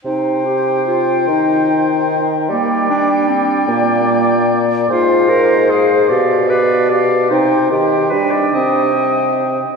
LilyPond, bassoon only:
\new Staff \with { instrumentName = "Bassoon" } { \clef bass \time 3/4 \key c \minor \tempo 4 = 149 c2. | ees2. | g2. | bes,2. |
aes,2. | b,2. | c4 ees4 g4 | c2~ c8 r8 | }